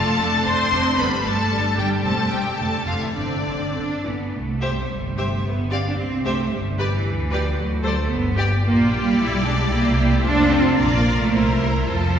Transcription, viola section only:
0.00 0.18 A3 medium
0.00 0.18 D4 soft
0.19 0.45 A3 soft
0.19 0.45 D4 soft
0.46 0.69 A3 medium
0.46 0.70 D4 soft
0.71 0.97 A3 soft
0.71 0.97 D4 medium
0.98 1.23 G3 medium
0.98 1.22 D4 medium
1.24 1.48 G3 soft
1.24 1.49 D4 soft
1.50 1.75 G3 soft
1.50 1.75 D4 soft
1.76 2.02 G3 soft
1.76 2.03 D4 medium
2.03 2.29 G3 soft
2.03 2.29 C4 soft
2.30 2.58 G3 soft
2.30 2.58 C4 soft
2.59 2.86 D3 soft
2.59 2.86 A3 soft
2.87 3.15 D3 soft
2.87 3.16 A3 soft
3.16 3.44 D3 soft
3.16 3.44 C4 soft
3.45 3.73 D3 soft
3.45 3.75 C4 soft
3.75 3.83 D3 soft
4.04 4.12 E3 soft
4.61 4.75 G4 soft
5.17 5.30 G4 soft
5.70 5.83 G4 soft
6.25 6.37 G4 medium
6.78 6.91 G4 soft
7.31 7.44 G4 medium
7.84 7.96 A4 medium
8.35 8.48 G4 medium
8.62 9.12 F4 medium
9.17 9.43 E4 medium
9.44 9.70 D4 medium
9.68 10.22 E4 medium
10.22 10.76 F4 medium
10.77 11.28 F4 medium
11.32 11.88 E4 medium
11.89 12.19 F4 medium

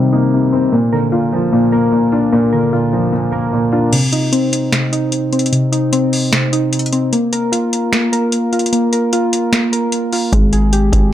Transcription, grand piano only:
0.00 0.33 C3 medium
0.00 0.32 D#3 medium
0.00 0.74 G3 medium
0.00 0.13 A#3 medium
0.00 0.53 C4 medium
0.13 0.73 A#3 medium
0.33 0.73 C3 medium
0.53 0.73 C4 medium
0.72 1.11 A#2 medium
0.92 1.92 D3 medium
1.12 1.51 A#2 medium
1.33 2.33 F3 medium
1.53 1.90 A#2 medium
1.73 2.73 A#3 loud
1.92 2.31 A#2 medium
2.12 3.12 D4 medium
2.32 2.71 A#2 loud
2.53 3.53 D3 medium
2.73 3.11 A#2 medium
2.93 3.93 F3 medium
3.13 3.51 A#2 medium
3.32 3.92 A#3 medium
3.53 3.93 A#2 medium
3.72 3.92 D4 medium

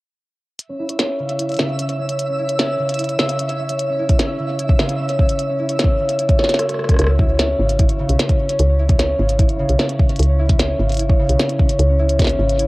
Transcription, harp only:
0.69 0.99 C#4 medium
0.79 1.39 E4 medium
0.89 1.49 C#5 medium
0.99 1.69 C#4 medium
1.19 1.58 C#3 medium
1.39 2.39 E4 medium
1.49 1.89 C#5 medium
1.59 2.78 C#3 medium
1.69 1.78 C#4 medium
1.79 1.99 C#4 medium
1.89 2.49 C#5 medium
1.99 2.09 C#4 medium
2.09 2.29 C#4 medium
2.29 2.59 C#4 medium
2.39 2.99 E4 medium
2.49 3.09 C#5 medium
2.59 3.29 C#4 medium
2.79 3.18 C#3 medium
2.99 3.99 E4 medium
3.09 3.49 C#5 medium
3.19 4.38 C#3 medium
3.29 3.39 C#4 medium
3.39 3.59 C#4 medium
3.49 4.09 C#5 medium
3.59 3.69 C#4 medium
3.69 3.89 C#4 medium
3.89 4.19 C#4 medium
3.99 4.59 E4 medium
4.09 4.69 C#5 medium
4.19 4.89 C#4 medium
4.39 4.78 C#3 medium
4.59 5.59 E4 medium
4.69 5.09 C#5 medium
4.79 5.98 C#3 loud
4.89 4.99 C#4 medium
4.99 5.19 C#4 medium
5.09 5.69 C#5 medium
5.19 5.29 C#4 medium
5.29 5.49 C#4 medium
5.49 5.79 C#4 medium
5.59 6.19 E4 medium
5.69 6.29 C#5 medium
5.79 6.69 C#4 medium
5.99 7.04 C#3 medium
6.19 7.19 E4 medium
6.29 6.39 C#5 medium
6.39 7.29 C#5 loud
6.49 6.59 F#4 medium
6.59 9.03 F#4 medium
6.69 6.79 C#4 medium
6.79 6.89 C#4 medium
6.89 7.09 C#4 medium
7.09 7.39 C#4 medium
7.19 7.79 E4 medium
7.29 7.89 C#5 medium
7.39 8.09 C#4 loud
7.59 7.98 C#3 medium
7.79 8.79 E4 medium
7.89 8.29 C#5 medium
7.99 9.18 C#3 medium
8.09 8.19 C#4 medium
8.19 8.39 C#4 medium
8.29 8.89 C#5 medium
8.39 8.49 C#4 medium
8.49 8.69 C#4 medium
8.69 8.99 C#4 medium
8.79 9.39 E4 medium
8.89 9.49 C#5 medium
8.99 9.69 C#4 loud
9.19 9.58 C#3 medium
9.39 10.39 E4 medium
9.49 9.89 C#5 medium
9.59 10.78 C#3 loud
9.69 9.79 C#4 medium
9.79 9.99 C#4 medium
9.89 10.49 C#5 medium
9.99 10.09 C#4 medium
10.09 10.29 C#4 medium
10.29 10.59 C#4 medium
10.39 10.99 E4 loud
10.49 11.09 C#5 medium
10.59 11.29 C#4 loud
10.79 11.18 C#3 medium
10.99 11.99 E4 medium
11.09 11.49 C#5 medium
11.19 12.38 C#3 medium
11.29 11.39 C#4 medium
11.39 11.59 C#4 medium
11.49 12.09 C#5 medium
11.59 11.69 C#4 medium
11.69 11.89 C#4 medium
11.89 12.19 C#4 medium
11.99 12.59 E4 medium
12.09 12.67 C#5 medium
12.19 12.67 C#4 loud
12.39 12.67 C#3 medium
12.59 12.67 E4 medium

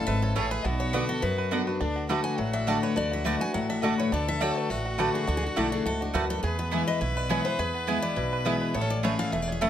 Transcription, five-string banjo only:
0.00 0.20 E4 medium
0.00 0.34 A4 medium
0.08 0.49 B4 medium
0.23 0.63 C#4 medium
0.36 0.65 A4 medium
0.51 0.65 B4 medium
0.64 1.06 B3 medium
0.80 1.08 F#4 medium
0.94 1.35 B4 medium
1.09 1.49 F#4 medium
1.23 1.50 B3 medium
1.38 1.66 B4 medium
1.52 1.80 B3 medium
1.67 1.81 B4 medium
1.80 2.53 D4 medium
1.96 2.24 F#4 soft
2.10 2.51 B4 medium
2.25 2.67 F#4 medium
2.39 3.54 F#3 medium
2.54 2.96 D4 medium
2.67 3.11 F#4 medium
2.83 3.23 B4 medium
2.96 3.69 D4 medium
3.12 3.40 F#4 medium
3.25 3.66 B4 medium
3.41 3.82 F#4 medium
3.54 4.94 F#3 medium
3.69 4.12 D4 medium
3.83 4.40 F#4 medium
3.98 4.38 B4 medium
4.12 4.53 D4 medium
4.41 4.69 F#4 medium
4.56 4.96 D4 medium
4.70 4.84 F#4 medium
4.85 5.25 F#4 medium
4.99 5.40 B4 medium
5.14 5.26 D4 medium
5.28 5.69 D4 medium
5.43 5.55 F#4 soft
5.56 5.84 F#4 medium
5.72 6.12 D4 medium
5.86 6.00 F#4 medium
6.01 6.41 F#4 medium
6.15 6.43 B4 medium
6.30 6.43 D4 medium
6.44 6.85 G#4 medium
6.59 6.99 B3 medium
6.73 7.01 E4 medium
6.88 7.16 B4 medium
7.01 7.88 E4 medium
7.17 7.44 B4 medium
7.30 7.58 G#4 medium
7.46 7.85 B4 medium
7.59 8.00 G#4 medium
7.74 8.14 B3 soft
7.88 8.16 E4 medium
8.03 8.31 B4 medium
8.17 8.58 E4 medium
8.33 8.60 B4 medium
8.46 8.75 G#4 medium
8.61 8.75 B4 medium
8.75 8.81 B3 medium
8.81 9.04 C#4 medium
9.04 9.45 B4 medium
9.19 9.59 A4 medium
9.33 9.70 A3 medium
9.48 9.70 C#4 medium
9.61 9.70 A4 medium

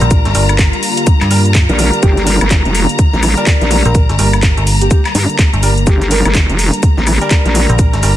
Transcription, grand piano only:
0.00 0.33 G3 medium
0.00 0.33 D4 medium
0.00 0.33 A#4 loud
0.35 0.42 G3 medium
0.35 0.42 D4 medium
0.35 0.42 A#4 loud
1.31 1.38 G3 medium
1.31 1.38 D4 medium
1.31 1.38 A#4 loud
1.69 1.77 G3 medium
1.69 1.77 D4 medium
1.69 1.77 A#4 medium
1.79 2.25 G3 medium
1.79 2.25 D4 medium
1.79 2.25 A#4 medium
2.27 2.38 G3 medium
2.27 2.38 D4 medium
2.27 2.38 A#4 medium
3.37 4.17 G3 medium
3.37 4.17 D4 medium
3.37 4.17 A#4 loud
4.19 4.26 G3 medium
4.19 4.26 D4 medium
4.19 4.26 A#4 loud
5.63 5.70 G3 medium
5.63 5.70 D4 medium
5.63 5.70 A#4 loud
6.11 6.22 G3 medium
6.11 6.22 D4 medium
6.11 6.22 A#4 loud
7.21 8.01 G3 medium
7.21 8.01 D4 medium
7.21 8.01 A#4 loud
8.03 8.10 G3 medium
8.03 8.10 D4 medium
8.03 8.10 A#4 loud

